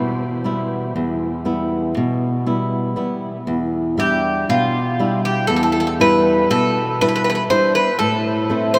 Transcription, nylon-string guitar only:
0.00 0.93 B2 medium
0.00 0.24 G3 soft
0.00 0.25 B3 soft
0.00 0.25 E4 medium
0.44 1.25 G3 soft
0.44 1.25 B3 soft
0.44 1.26 E4 medium
0.96 1.93 E2 medium
1.45 2.26 G3 soft
1.45 2.26 B3 soft
1.45 2.26 E4 soft
1.97 2.94 B2 medium
2.46 2.95 G3 soft
2.46 2.95 B3 soft
2.46 2.96 E4 medium
2.96 3.37 G3 soft
2.96 3.37 B3 soft
2.96 3.37 E4 soft
3.47 4.45 E2 medium
3.97 4.78 G3 soft
3.97 4.78 D4 soft
3.97 4.79 E5 medium
4.49 5.46 B2 medium
4.99 5.79 G3 soft
4.99 5.80 D4 soft
4.99 5.80 E4 medium
5.50 6.46 E2 medium
6.00 6.80 G3 soft
6.00 6.80 D4 soft
6.00 6.80 E4 medium
6.50 7.47 B2 medium
7.01 7.49 G3 medium
7.01 7.49 D4 soft
7.01 7.49 E4 medium
7.50 7.90 G3 soft
7.50 7.90 D4 soft
7.50 7.90 E4 medium
8.00 8.79 A2 medium
8.50 8.79 A3 medium
8.50 8.79 C4 soft
8.50 8.79 E4 medium

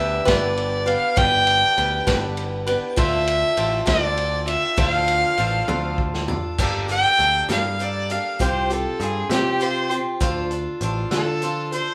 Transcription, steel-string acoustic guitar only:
0.00 0.24 G3 medium
0.00 0.24 B3 medium
0.00 0.24 D4 medium
0.00 0.24 B4 medium
0.25 0.87 G2 medium
0.25 0.87 D3 medium
0.25 0.86 G3 medium
0.25 0.85 B3 medium
0.25 0.86 D4 medium
0.25 0.85 B4 medium
0.86 1.15 G3 soft
0.86 1.16 B3 medium
0.86 1.16 D4 medium
0.86 1.16 B4 medium
1.16 1.77 G2 medium
1.16 1.77 D3 medium
1.16 1.76 G3 medium
1.16 1.77 B3 medium
1.16 1.78 D4 medium
1.16 1.77 B4 medium
1.77 2.06 G3 medium
1.77 2.06 B3 medium
1.77 2.06 D4 medium
1.77 2.05 B4 medium
2.07 2.68 G2 medium
2.07 2.67 D3 medium
2.07 2.68 G3 medium
2.07 2.67 B3 medium
2.07 2.67 D4 medium
2.07 2.65 B4 medium
2.67 2.96 G3 soft
2.67 2.97 B3 medium
2.67 2.96 D4 medium
2.67 2.97 B4 medium
2.96 3.87 D3 medium
2.96 3.56 F3 loud
2.96 3.57 D4 medium
2.96 3.57 F4 medium
2.96 3.58 A4 medium
3.57 3.86 F3 medium
3.57 3.85 D4 medium
3.57 3.85 F4 medium
3.57 3.84 A4 medium
3.86 4.48 D3 medium
3.86 4.47 F3 medium
3.86 4.48 D4 medium
3.86 4.46 F4 medium
3.86 4.47 A4 medium
4.47 4.76 D4 medium
4.47 4.77 F4 medium
4.47 4.77 A4 medium
4.77 5.37 D3 medium
4.77 5.37 F3 medium
4.77 5.38 D4 medium
4.77 5.38 F4 loud
4.77 5.38 A4 medium
5.38 5.68 F3 medium
5.38 5.67 D4 medium
5.38 5.67 F4 medium
5.38 5.67 A4 medium
5.68 6.29 D3 medium
5.68 6.29 F3 medium
5.68 6.29 D4 medium
5.68 6.28 F4 medium
5.68 6.27 A4 medium
6.28 6.59 D4 medium
6.28 6.59 F4 medium
6.28 6.58 A4 medium
6.59 6.89 G2 medium
6.59 6.89 D3 medium
6.59 6.89 G3 medium
6.59 6.88 A#3 medium
6.59 6.87 D4 medium
6.59 6.87 A4 loud
6.88 7.16 G3 soft
6.88 7.17 A#3 soft
6.88 7.17 D4 medium
6.88 7.18 A4 soft
7.17 7.48 G3 medium
7.17 7.48 A#3 medium
7.17 7.47 D4 medium
7.17 7.47 A4 medium
7.49 7.79 G2 medium
7.49 7.80 D3 medium
7.49 7.78 G3 medium
7.49 7.79 A#3 medium
7.49 7.79 D4 medium
7.49 7.79 A4 medium
7.79 8.09 G3 medium
7.79 8.10 A#3 medium
7.79 8.09 D4 medium
7.79 8.09 A4 medium
8.10 8.40 G3 soft
8.10 8.40 A#3 soft
8.10 8.40 D4 soft
8.10 8.40 A4 medium
8.39 8.70 C3 medium
8.39 8.70 F3 medium
8.39 8.70 C4 medium
8.39 8.69 F4 medium
8.39 8.69 G4 medium
8.70 9.00 C4 soft
8.70 9.00 F4 soft
8.70 9.00 G4 medium
9.00 9.30 F3 medium
9.00 9.30 C4 medium
9.00 9.30 F4 medium
9.30 9.61 C3 soft
9.30 9.59 F3 medium
9.30 9.59 C4 medium
9.30 9.60 F4 medium
9.30 9.60 G4 medium
9.60 9.90 F3 medium
9.60 9.91 C4 medium
9.60 9.89 F4 medium
9.60 9.89 G4 medium
9.90 10.21 C4 soft
9.90 10.20 F4 soft
9.90 10.21 G4 medium
10.20 10.51 D3 medium
10.20 10.51 F3 loud
10.20 10.51 D4 loud
10.20 10.51 F4 loud
10.20 10.50 A4 loud
10.51 10.82 D4 medium
10.51 10.82 F4 medium
10.51 10.82 A4 medium
10.82 11.12 F3 medium
10.82 11.12 D4 medium
10.82 11.11 F4 medium
10.82 11.11 A4 medium
11.12 11.43 D3 medium
11.12 11.41 F3 medium
11.12 11.41 D4 medium
11.12 11.42 F4 medium
11.12 11.42 A4 medium
11.42 11.73 F3 medium
11.42 11.73 D4 medium
11.42 11.72 F4 medium
11.42 11.71 A4 medium
11.72 11.94 D4 medium
11.72 11.94 F4 soft
11.72 11.94 A4 medium

